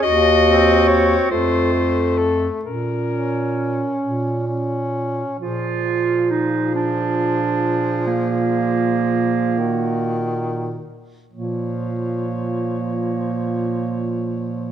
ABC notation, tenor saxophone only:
X:1
M:6/8
L:1/8
Q:3/8=43
K:Bbm
V:1 name="Tenor saxophone"
z C2 =A, A,2 | z D3 D2 | F,6- | F,3 E,2 z |
F,6 |]